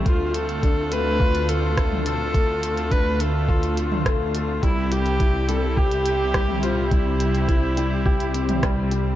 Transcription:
<<
  \new Staff \with { instrumentName = "Viola" } { \time 4/4 \key d \dorian \tempo 4 = 105 f'8 a'4 b'4 a'4 a'8~ | a'4 b'8 a'4. r4 | e'8 g'4 a'8 g'4. f'8 | e'2.~ e'8 r8 | }
  \new Staff \with { instrumentName = "String quartet" } { \time 4/4 \key d \dorian <d a c' f'>1~ | <d a c' f'>1 | <c c' e' g'>1~ | <c c' e' g'>1 | }
  \new Staff \with { instrumentName = "Felt piano" } { \time 4/4 \key d \dorian a8 r8 d'8 a8 f'8 r8 a8 a'8 | a8 r8 d'8 a8 f'8 r8 a8 a'8 | g8 r8 e'8 g8 g'8 r8 g8 c''8 | g8 r8 e'8 g8 g'8 c'8 g8 g8 | }
  \new Staff \with { instrumentName = "Detuned saw bass" } { \clef bass \time 4/4 \key d \dorian d,1~ | d,1 | c,1~ | c,1 | }
  \new DrumStaff \with { instrumentName = "Drums" } \drummode { \time 4/4 <hh bd>8 hh16 hh16 <hh bd>8 hh8 bd16 hh16 hh8 <hh bd ss>16 toml16 hh8 | <hh bd>8 hh16 hh16 <hh bd>8 hh8 bd16 hh16 hh16 toml16 <hh bd ss>8 hh8 | <hh bd>8 hh16 hh16 <hh bd>8 hh8 bd16 hh16 hh8 <hh bd ss>16 toml16 hh8 | <hh bd>8 hh16 hh16 <hh bd>8 hh8 bd16 hh16 hh16 <hh toml>16 <hh bd ss>8 hh8 | }
>>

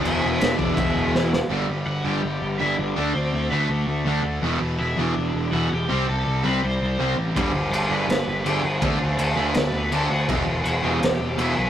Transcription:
<<
  \new Staff \with { instrumentName = "Overdriven electric guitar" } { \time 4/4 \key e \minor \tempo 4 = 164 <e' e''>4 <e' e''>8 <d' d''>8 <e' e''>4. r8 | r4 <fis' fis''>8 <g' g''>4. <e' e''>8 <d' d''>8~ | <d' d''>8 <c' c''>4 <b b'>8 <a a'>4. r8 | r4 <e' e''>8 <d' d''>4. <fis' fis''>8 <g' g''>8~ |
<g' g''>8 <a' a''>4 <b' b''>8 <c'' c'''>4. r8 | r4 <a' a''>8 <b' b''>4. <g' g''>8 <fis' fis''>8 | r4 <a' a''>8 <b' b''>4. <a' a''>8 <fis' fis''>8 | r4 <fis' fis''>8 <g' g''>4. <e' e''>8 <e' e''>8 | }
  \new Staff \with { instrumentName = "Distorted electric guitar" } { \clef bass \time 4/4 \key e \minor <e, b, e>2.~ <e, b, e>8 r8 | <g, d g>8 r4 <g, d g>8 r4 <g, d g>8 r8 | <d a d'>8 r4 <d a d'>8 r4 <d a d'>8 r8 | <e, b, e>8 r4 <e, b, e>8 r4 <e, b, e>8 r8 |
<c g c'>8 r4 <c g c'>8 r4 <c g c'>8 r8 | <g, d g>8 r4 <g, d g>8 r4 <g, d g>8 r8 | <d a d'>8 r4 <d a d'>8 r4 <d a d'>8 r8 | <e, b, e>8 r4 <e, b, e>8 r4 <e, b, e>8 r8 | }
  \new Staff \with { instrumentName = "Distorted electric guitar" } { \clef bass \time 4/4 \key e \minor <e, b, e>2.~ <e, b, e>8 r8 | <g, d g>8 r4 <g, d g>8 r4 <g, d g>8 r8 | <d a d'>8 r4 <d a d'>8 r4 <d a d'>8 r8 | <e, b, e>8 r4 <e, b, e>8 r4 <e, b, e>8 r8 |
<c g c'>8 r4 <c g c'>8 r4 <c g c'>8 r8 | <g, d g>8 r4 <g, d g>8 r4 <g, d g>8 r8 | <d a d'>8 r4 <d a d'>8 r4 <d a d'>8 r8 | <e, b, e>8 r4 <e, b, e>8 r4 <e, b, e>8 r8 | }
  \new Staff \with { instrumentName = "Distorted electric guitar" } { \clef bass \time 4/4 \key e \minor <e, b, e>4 <e, b, e>2~ <e, b, e>8 r8 | <g, d g>1 | <d a d'>1 | <e, b, e>1 |
<c g c'>1 | <g, d g>1 | <d a d'>1 | <e, b, e>1 | }
  \new Staff \with { instrumentName = "Picked electric bass" } { \clef bass \time 4/4 \key e \minor e,,8 e,,8 e,,8 e,,8 e,,8 e,,8 e,,4 | g,,8 g,,8 g,,8 g,,8 g,,8 g,,8 g,,8 g,,8 | d,8 d,8 d,8 d,8 d,8 d,8 d,8 d,8 | e,,8 e,,8 e,,8 e,,8 e,,8 e,,8 e,,8 e,,8 |
c,8 c,8 c,8 c,8 c,8 c,8 c,8 a,,8 | g,,8 g,,8 g,,8 g,,8 g,,8 g,,8 g,,8 g,,8 | d,8 d,8 d,8 d,8 d,8 d,8 d,8 d,8 | e,,8 e,,8 e,,8 e,,8 e,,8 e,,8 e,,8 b,,8 | }
  \new DrumStaff \with { instrumentName = "Drums" } \drummode { \time 4/4 cymc4 <cymc sn>8 bd8 <cymc bd>4 sn8 sn8 | r4 r4 r4 r4 | r4 r4 r4 r4 | r4 r4 r4 r4 |
r4 r4 r4 r4 | <cymc bd>4 cymc4 <cymc sn>4 cymc4 | <cymc bd>4 cymc4 <cymc sn>4 cymc4 | <cymc bd>4 cymc4 <cymc sn>4 cymc4 | }
>>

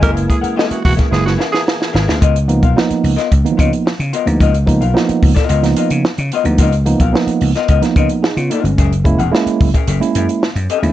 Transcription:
<<
  \new Staff \with { instrumentName = "Hollow-body jazz guitar" } { \time 4/4 \key ges \major \tempo 4 = 110 <des' aes' bes' fes''>16 r8 <des' aes' bes' ges''>16 <des' aes' bes' fes''>16 r8 <des' aes' bes' fes''>16 r8 <des' aes' bes' fes''>16 r8. <des' aes' bes' fes''>16 <des' aes' bes' fes''>16 | <ces' f' bes' ees''>16 r8 <ces' f' bes' f''>16 r8. <ces' f' bes' ees''>16 r8 <ces' f' bes' ees''>16 r8. <ces' f' bes' ees''>16 r16 | <ces' f' bes' ees''>16 r8 <ces' f' bes' f''>16 r8. <ces' f' bes' ees''>16 <ces' f' bes' ees''>16 r16 <ces' f' bes' ees''>16 r8. <ces' f' bes' ees''>16 r16 | <ces' f' bes' ees''>16 r8 <ces' f' bes' f''>16 r8. <ces' f' bes' ees''>16 <ces' f' bes' ees''>16 r16 <ces' f' bes' ees''>16 r8. <ces' f' bes' ees''>16 r16 |
<des' aes' bes' fes''>16 r8 <des' aes' bes' ges''>16 r8. <des' aes' bes' fes''>16 <des' aes' bes' fes''>16 r16 <des' aes' bes' fes''>16 r8. <des' aes' bes' fes''>16 r16 | }
  \new Staff \with { instrumentName = "Tenor saxophone" } { \time 4/4 \key ges \major bes'16 r16 aes'16 r8 ges'16 ges'16 r16 aes'16 ges'16 r16 aes'16 r4 | r1 | r1 | r1 |
r1 | }
  \new Staff \with { instrumentName = "Tine electric piano" } { \time 4/4 \key ges \major << { aes''16 r2. r8. | r8 <f bes ces' ees'>16 r16 <f bes ces' ees'>8. r8 <ees f bes ces' ees'>8. r8. <f bes ces' ees'>16~ | <f bes ces' ees'>16 r16 <f bes ces' ees'>16 r16 <f bes ces' ees'>8. r8 <f bes ces' ees'>8. r8. <f bes ces' ees'>16~ | <f bes ces' ees'>16 r16 <f bes ces' ees'>16 r16 <f bes ces' ees'>8. r8 <f bes ces' ees'>8. <ees' aes'>16 <ces' f'>16 <bes ees'>16 <aes des'>16~ |
<aes des'>16 r16 <aes bes des' fes'>16 r16 <aes bes des' fes'>8. r8 <aes bes des' fes'>8. r8. <aes bes des' fes'>16 | } \\ { <aes bes fes'>2 <aes bes fes'>8 r4. | r1 | r1 | r1 |
r1 | } >> }
  \new Staff \with { instrumentName = "Tonewheel organ" } { \time 4/4 \key ges \major <fes bes aes'>1 | r1 | r1 | r1 |
r1 | }
  \new Staff \with { instrumentName = "Slap bass" } { \clef bass \time 4/4 \key ges \major ges,,8 r4 fes,,16 r16 ges,,8 r4 aes,,16 d,16 | des,8. ces,16 r8 des,16 r16 des,16 r16 des16 r8 des16 r16 d,16 | des,8. ces,16 r8 des,16 r16 des,8 r16 des16 r16 des16 r16 d,16 | des,8. ces,16 r8 des,16 r16 des,16 r16 des16 r8 des16 r16 g,,16 |
ges,,8. fes,,16 r8 ges,,16 r16 ges,,16 r16 ges,16 r8 ges,16 r16 d,16 | }
  \new DrumStaff \with { instrumentName = "Drums" } \drummode { \time 4/4 <hh bd>16 hh16 <hh bd>16 hh16 sn16 hh16 <hho bd>16 <hh bd sn>16 sn16 sn16 sn16 sn16 sn16 sn16 sn16 sn16 | <hh bd>16 hh16 hh16 <hh bd>16 sn16 hh16 hho16 <hh sn>16 <hh bd>16 hh16 <hh bd>16 hh16 sn16 hh16 hh16 hh16 | <hh bd>16 hh16 <hh bd>16 hh16 sn16 hh16 <hho bd>16 <hh bd sn>16 hh16 <hh sn>16 hh16 hh16 sn16 hh16 hh16 hh16 | <hh bd>16 hh16 hh16 <hh bd>16 sn16 hh16 hho16 <hh sn>16 <hh bd>16 <hh sn>16 <hh bd>16 hh16 sn16 hh16 hh16 hh16 |
<hh bd>16 hh16 <hh bd>16 hh16 sn16 hh16 <hho bd>16 <hh bd>16 hh16 hh16 hh16 hh16 sn16 hh16 hh16 hh16 | }
>>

